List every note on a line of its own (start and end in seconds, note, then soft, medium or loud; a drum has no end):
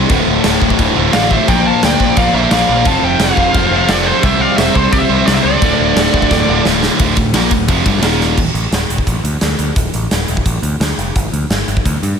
0.09 0.21 D1 loud
0.09 0.95 D2 medium
0.09 0.77 D2 medium
0.09 0.95 A2 loud
0.09 0.78 A2 medium
0.09 0.95 D3 loud
0.09 0.79 D3 medium
0.09 0.95 A3 loud
0.09 0.95 F4 loud
0.09 kick loud
0.09 crash medium
0.28 0.39 D1 medium
0.44 0.56 D1 medium
0.44 snare loud
0.44 crash medium
0.62 0.73 D1 medium
0.62 kick medium
0.70 kick medium
0.78 0.90 D1 medium
0.78 1.46 D2 medium
0.78 1.47 A2 medium
0.78 1.47 D3 medium
0.78 kick loud
0.78 crash medium
0.96 1.07 D1 medium
0.96 1.12 D2 medium
0.96 1.13 A2 medium
0.96 1.12 D3 medium
0.96 1.12 A3 medium
0.96 1.15 F4 medium
1.13 1.36 A1 medium
1.13 1.46 D2 medium
1.13 1.47 A2 medium
1.13 1.47 D3 medium
1.13 1.48 A3 medium
1.13 1.49 F4 medium
1.13 1.30 D5 medium
1.13 1.29 F5 loud
1.13 snare loud
1.13 crash medium
1.30 1.46 C5 medium
1.30 1.47 E5 loud
1.30 kick medium
1.47 1.70 A#1 medium
1.47 2.33 A#2 medium
1.47 2.15 A#2 medium
1.47 2.33 F3 medium
1.47 2.17 F3 loud
1.47 2.33 A#3 loud
1.47 2.17 A#3 loud
1.47 2.33 D4 medium
1.47 2.34 F4 loud
1.47 2.33 A#4 loud
1.47 1.64 D5 medium
1.47 1.64 G5 loud
1.47 kick loud
1.47 crash medium
1.66 1.82 F5 medium
1.66 1.84 A5 loud
1.83 1.94 D2 medium
1.83 2.15 D5 medium
1.83 2.19 G5 loud
1.83 snare loud
1.83 crash medium
2.00 2.11 A#1 medium
2.00 kick medium
2.16 2.28 A#1 medium
2.16 2.84 A#2 medium
2.16 2.85 F3 medium
2.16 2.86 A#3 loud
2.16 2.36 D5 medium
2.16 2.34 F5 loud
2.16 kick loud
2.16 crash medium
2.34 2.45 A#1 medium
2.34 2.49 A#2 medium
2.34 2.50 F3 medium
2.34 2.51 A#3 medium
2.34 2.51 D4 medium
2.34 2.51 F4 medium
2.34 2.50 A#4 medium
2.34 2.52 C5 medium
2.34 2.51 E5 medium
2.51 2.63 A#1 medium
2.51 2.84 A#2 medium
2.51 2.85 F3 medium
2.51 2.85 A#3 medium
2.51 2.85 D4 medium
2.51 2.85 F4 medium
2.51 2.85 A#4 medium
2.51 2.84 D5 medium
2.51 2.87 F5 loud
2.51 snare loud
2.51 crash medium
2.69 2.87 A#1 medium
2.85 2.97 F1 medium
2.85 3.53 F2 medium
2.85 3.71 F2 medium
2.85 3.54 C3 medium
2.85 3.71 C3 loud
2.85 3.71 F3 medium
2.85 3.55 F3 loud
2.85 3.71 A3 loud
2.85 3.71 C4 medium
2.85 3.70 F4 loud
2.85 3.05 F5 medium
2.85 3.04 A5 loud
2.85 kick loud
2.85 crash medium
3.03 3.14 F1 medium
3.03 3.22 E5 medium
3.03 3.20 G5 loud
3.19 3.31 F1 medium
3.19 3.90 C5 medium
3.19 3.89 F5 medium
3.19 snare loud
3.19 crash medium
3.37 3.48 F1 medium
3.37 kick medium
3.55 3.66 F1 medium
3.55 4.22 F2 medium
3.55 4.21 C3 medium
3.55 4.24 F3 loud
3.55 kick loud
3.55 crash medium
3.71 3.82 F1 loud
3.71 3.87 F2 medium
3.71 3.87 C3 medium
3.71 3.88 F3 medium
3.71 3.88 A3 medium
3.71 3.88 C4 medium
3.71 3.88 F4 medium
3.88 4.11 F1 medium
3.88 4.22 F2 medium
3.88 4.22 C3 medium
3.88 4.23 F3 medium
3.88 4.23 A3 medium
3.88 4.23 C4 medium
3.88 4.23 F4 medium
3.88 4.06 A4 medium
3.88 4.07 D5 loud
3.88 snare loud
3.88 crash medium
4.07 4.23 A4 medium
4.07 4.24 C5 medium
4.23 4.45 C2 loud
4.23 4.91 C3 medium
4.23 5.08 C3 loud
4.23 5.09 G3 loud
4.23 4.92 G3 medium
4.23 5.09 C4 loud
4.23 4.92 C4 loud
4.23 5.09 E4 loud
4.23 5.09 G4 loud
4.23 5.08 C5 loud
4.23 4.42 C5 medium
4.23 4.41 E5 loud
4.23 kick loud
4.23 crash medium
4.41 4.59 D5 medium
4.41 4.57 F5 medium
4.57 4.69 E1 medium
4.57 4.75 C5 medium
4.57 4.74 E5 medium
4.57 snare loud
4.57 crash medium
4.75 4.86 C2 medium
4.75 4.94 A4 medium
4.75 4.92 C5 medium
4.75 kick medium
4.92 5.04 C2 medium
4.92 5.60 C3 medium
4.92 5.61 G3 medium
4.92 5.62 C4 medium
4.92 5.02 G4 medium
4.92 4.99 D5 medium
4.92 kick loud
4.92 crash medium
4.99 5.26 C5 medium
4.99 5.26 E5 medium
5.09 5.21 C2 medium
5.09 5.25 C3 medium
5.09 5.26 G3 medium
5.09 5.26 C4 medium
5.09 5.26 E4 medium
5.09 5.26 G4 medium
5.09 5.26 C5 medium
5.27 5.38 C2 medium
5.27 5.60 C3 medium
5.27 5.60 G3 medium
5.27 5.61 C4 medium
5.27 5.61 E4 medium
5.27 5.35 G4 medium
5.27 5.61 G4 medium
5.27 5.61 C5 loud
5.27 5.34 D5 loud
5.27 snare loud
5.27 crash medium
5.35 5.44 C5 medium
5.35 5.43 E5 medium
5.44 5.55 C#2 medium
5.44 6.61 A4 medium
5.44 6.61 D5 medium
5.61 5.73 D1 loud
5.61 6.29 D2 medium
5.61 6.47 D2 medium
5.61 6.47 A2 medium
5.61 6.30 A2 loud
5.61 6.47 D3 loud
5.61 6.30 D3 loud
5.61 6.47 A3 loud
5.61 6.47 F4 loud
5.61 kick loud
5.61 crash medium
5.79 5.90 D1 medium
5.96 6.07 D1 medium
5.96 snare loud
5.96 crash medium
6.13 6.24 D1 medium
6.13 kick medium
6.22 kick medium
6.30 6.42 D1 medium
6.30 6.98 D2 medium
6.30 6.99 A2 medium
6.30 6.99 D3 medium
6.30 kick loud
6.30 snare medium
6.48 6.59 D1 medium
6.48 6.63 D2 medium
6.48 6.64 A2 medium
6.48 6.64 D3 medium
6.48 6.64 A3 medium
6.48 6.64 F4 medium
6.65 6.88 D1 medium
6.65 6.98 D2 medium
6.65 6.99 A2 medium
6.65 6.99 D3 medium
6.65 6.99 A3 medium
6.65 6.99 F4 medium
6.65 snare medium
6.83 snare medium
6.99 7.16 D1 loud
6.99 7.16 D2 loud
6.99 7.16 D2 medium
6.99 7.16 A2 medium
6.99 7.16 A2 loud
6.99 7.16 D3 loud
6.99 7.17 D3 medium
6.99 kick loud
6.99 ride medium
7.17 7.33 D1 medium
7.17 7.31 D2 medium
7.17 7.31 A2 medium
7.17 kick medium
7.17 ride medium
7.33 7.50 A#1 medium
7.33 7.50 A#2 medium
7.33 7.51 A#2 medium
7.33 7.51 F3 medium
7.33 7.51 F3 loud
7.33 7.51 A#3 loud
7.33 7.52 A#3 loud
7.33 snare loud
7.33 ride loud
7.51 7.67 D1 medium
7.51 7.65 D2 medium
7.51 7.65 A2 medium
7.51 7.66 A2 medium
7.51 kick medium
7.51 ride medium
7.68 7.85 F1 medium
7.68 7.85 F2 medium
7.68 7.84 F2 medium
7.68 7.85 C3 loud
7.68 7.86 F3 loud
7.68 kick loud
7.68 ride medium
7.85 8.02 G1 medium
7.85 8.02 G2 medium
7.85 8.02 D3 loud
7.85 8.03 D3 loud
7.85 8.03 G3 loud
7.85 kick loud
7.85 ride medium
8.02 8.35 D#1 medium
8.02 8.37 D#2 medium
8.02 8.37 A#2 medium
8.02 8.37 D#3 loud
8.02 8.37 D#3 medium
8.02 snare loud
8.02 ride medium
8.20 snare medium
8.37 8.49 D1 medium
8.37 kick loud
8.37 crash medium
8.54 8.66 A1 medium
8.54 closed hi-hat medium
8.72 8.84 D1 medium
8.72 snare loud
8.72 closed hi-hat medium
8.89 9.01 D1 medium
8.89 closed hi-hat medium
8.98 kick medium
9.07 9.19 A1 medium
9.07 kick medium
9.07 closed hi-hat medium
9.24 9.36 D2 medium
9.24 closed hi-hat medium
9.41 9.53 D2 medium
9.41 snare medium
9.41 closed hi-hat medium
9.59 9.71 D2 medium
9.59 closed hi-hat medium
9.76 9.88 D1 medium
9.76 kick loud
9.76 closed hi-hat medium
9.94 10.06 A1 medium
9.94 closed hi-hat medium
10.11 10.23 D1 medium
10.11 snare loud
10.11 closed hi-hat medium
10.28 10.41 D1 medium
10.28 closed hi-hat medium
10.37 kick medium
10.46 10.58 A1 medium
10.46 kick medium
10.46 closed hi-hat medium
10.63 10.75 D2 medium
10.63 closed hi-hat medium
10.80 10.92 D2 medium
10.80 snare loud
10.80 closed hi-hat medium
10.98 11.10 F1 medium
10.98 closed hi-hat medium
11.16 11.27 G1 medium
11.16 kick loud
11.16 closed hi-hat medium
11.32 11.44 D2 medium
11.32 closed hi-hat medium
11.50 11.62 G1 medium
11.50 snare medium
11.50 closed hi-hat medium
11.68 11.80 G1 medium
11.68 closed hi-hat medium
11.77 kick medium
11.85 11.97 D2 medium
11.85 kick medium
11.85 closed hi-hat medium
12.03 12.14 G2 medium
12.03 closed hi-hat medium